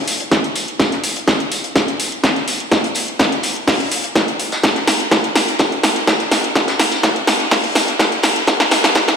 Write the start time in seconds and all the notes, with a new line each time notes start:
0.08 open hi-hat, tambourine
0.20 closed hi-hat
0.32 kick, snare, closed hi-hat, tambourine
0.44 closed hi-hat
0.55 open hi-hat, tambourine
0.68 closed hi-hat
0.80 kick, snare, closed hi-hat, tambourine
0.92 snare, closed hi-hat
1.04 open hi-hat, tambourine
1.16 closed hi-hat
1.28 kick, snare, closed hi-hat, tambourine
1.40 closed hi-hat
1.52 open hi-hat, tambourine
1.64 closed hi-hat
1.76 kick, snare, closed hi-hat, tambourine
1.88 closed hi-hat
2.00 open hi-hat, tambourine
2.12 closed hi-hat
2.24 kick, snare, closed hi-hat, tambourine
2.36 snare, closed hi-hat
2.48 open hi-hat, tambourine
2.60 closed hi-hat
2.72 kick, snare, closed hi-hat, tambourine
2.84 closed hi-hat
2.95 open hi-hat, tambourine
3.08 closed hi-hat
3.19 kick, snare, closed hi-hat, tambourine
3.32 closed hi-hat
3.43 open hi-hat, tambourine
3.56 closed hi-hat
3.68 kick, snare, closed hi-hat, open hi-hat
3.80 closed hi-hat
3.92 open hi-hat, tambourine
4.04 closed hi-hat
4.15 kick, snare, closed hi-hat, tambourine
4.28 closed hi-hat
4.39 open hi-hat, tambourine
4.52 snare, closed hi-hat, tambourine
4.63 kick, snare, closed hi-hat, tambourine
4.76 snare, closed hi-hat
4.87 snare, open hi-hat, tambourine
5.00 closed hi-hat
5.11 kick, snare, closed hi-hat, tambourine
5.24 closed hi-hat
5.35 snare, open hi-hat, tambourine
5.48 closed hi-hat
5.59 kick, snare, closed hi-hat, tambourine
5.72 closed hi-hat
5.83 snare, open hi-hat, tambourine
5.96 closed hi-hat
6.07 kick, snare, closed hi-hat, tambourine
6.20 snare, closed hi-hat
6.31 snare, open hi-hat, tambourine
6.44 closed hi-hat
6.55 kick, snare, closed hi-hat, tambourine
6.68 snare, closed hi-hat, tambourine
6.79 snare, open hi-hat
6.91 closed hi-hat, tambourine
7.03 kick, snare, closed hi-hat, tambourine
7.16 closed hi-hat
7.27 snare, open hi-hat, tambourine
7.40 closed hi-hat
7.51 kick, snare, closed hi-hat, open hi-hat
7.64 closed hi-hat
7.75 snare, open hi-hat, tambourine
7.88 closed hi-hat
7.99 kick, snare, closed hi-hat, tambourine
8.12 closed hi-hat
8.23 snare, open hi-hat, tambourine
8.36 closed hi-hat
8.47 kick, snare, closed hi-hat, tambourine
8.60 snare, closed hi-hat
8.71 snare, open hi-hat, tambourine
8.84 snare, closed hi-hat
8.95 kick, snare, closed hi-hat, tambourine
9.08 snare, closed hi-hat